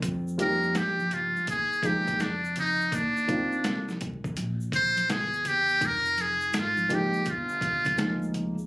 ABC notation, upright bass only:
X:1
M:4/4
L:1/16
Q:"Swing 16ths" 1/4=83
K:Fdor
V:1 name="Upright bass" clef=bass
F,,4 G,,3 z E,,4 F,,4 | E,,4 C,,3 z B,,,4 =E,,4 | F,,,4 A,,,3 z G,,,4 D,,4 |]